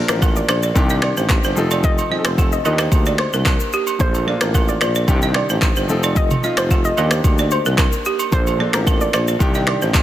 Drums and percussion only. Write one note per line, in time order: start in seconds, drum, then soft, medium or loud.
0.08 finger snap medium
0.08 cross-stick loud
0.08 shaker medium
0.22 kick loud
0.22 high agogo medium
0.22 low woodblock medium
0.22 shaker medium
0.36 shaker medium
0.49 finger snap medium
0.49 cross-stick medium
0.49 high agogo medium
0.49 shaker soft
0.63 shaker medium
0.76 kick loud
0.76 high agogo medium
0.76 shaker medium
0.90 shaker medium
1.02 finger snap medium
1.02 cross-stick medium
1.02 high agogo medium
1.17 shaker soft
1.29 finger snap medium
1.29 kick loud
1.29 cross-stick medium
1.29 clap medium
1.29 high agogo medium
1.29 shaker medium
1.44 shaker medium
1.57 shaker medium
1.71 high agogo medium
1.71 shaker medium
1.84 kick loud
1.84 shaker medium
1.98 high agogo medium
1.98 shaker medium
2.25 finger snap medium
2.25 cross-stick loud
2.25 shaker medium
2.38 kick loud
2.38 high agogo medium
2.38 low woodblock medium
2.38 shaker medium
2.52 shaker medium
2.65 high agogo medium
2.65 shaker soft
2.78 finger snap medium
2.78 cross-stick loud
2.78 shaker medium
2.92 kick loud
2.92 high agogo medium
2.92 shaker medium
3.06 shaker medium
3.18 finger snap medium
3.18 cross-stick medium
3.18 high agogo medium
3.33 shaker soft
3.45 finger snap medium
3.45 kick loud
3.45 cross-stick loud
3.45 clap medium
3.45 high agogo medium
3.45 shaker medium
3.60 shaker medium
3.73 shaker medium
3.87 high agogo medium
3.87 shaker medium
4.00 kick loud
4.00 shaker medium
4.14 high agogo medium
4.14 shaker medium
4.41 finger snap medium
4.41 cross-stick loud
4.41 shaker medium
4.54 kick medium
4.54 high agogo medium
4.54 low woodblock medium
4.54 shaker medium
4.68 shaker medium
4.81 finger snap medium
4.81 cross-stick medium
4.81 high agogo medium
4.81 shaker medium
4.95 shaker medium
5.08 kick loud
5.08 high agogo medium
5.08 shaker medium
5.22 shaker medium
5.34 finger snap medium
5.34 cross-stick medium
5.34 high agogo medium
5.49 shaker medium
5.62 finger snap medium
5.62 kick loud
5.62 cross-stick medium
5.62 clap medium
5.62 high agogo medium
5.62 shaker medium
5.76 shaker medium
5.89 shaker medium
6.03 high agogo medium
6.03 shaker medium
6.16 kick loud
6.16 shaker medium
6.31 mid tom loud
6.31 high agogo medium
6.31 shaker medium
6.43 shaker soft
6.57 finger snap medium
6.57 cross-stick loud
6.57 shaker medium
6.71 kick medium
6.71 high agogo medium
6.71 low woodblock medium
6.71 shaker medium
6.85 shaker medium
6.97 high agogo medium
6.97 shaker soft
7.11 finger snap medium
7.11 cross-stick loud
7.11 shaker medium
7.24 kick loud
7.24 high agogo medium
7.24 shaker medium
7.38 shaker medium
7.51 high agogo medium
7.51 shaker medium
7.66 shaker soft
7.78 finger snap medium
7.78 kick medium
7.78 cross-stick medium
7.78 clap medium
7.78 high agogo medium
7.78 shaker medium
7.92 shaker medium
8.05 shaker medium
8.19 high agogo medium
8.19 shaker medium
8.32 kick loud
8.32 shaker medium
8.47 high agogo medium
8.47 shaker medium
8.73 finger snap medium
8.73 cross-stick loud
8.73 shaker medium
8.87 kick loud
8.87 high agogo medium
8.87 low woodblock medium
8.87 shaker medium
9.01 shaker medium
9.13 finger snap medium
9.13 cross-stick medium
9.13 high agogo medium
9.13 shaker soft
9.28 shaker medium
9.40 kick loud
9.40 high agogo medium
9.40 shaker medium
9.54 shaker medium
9.67 finger snap medium
9.67 cross-stick medium
9.67 high agogo medium
9.82 shaker soft
9.94 finger snap medium
9.94 kick loud
9.94 cross-stick medium
9.94 clap medium
9.94 high agogo medium
9.94 shaker medium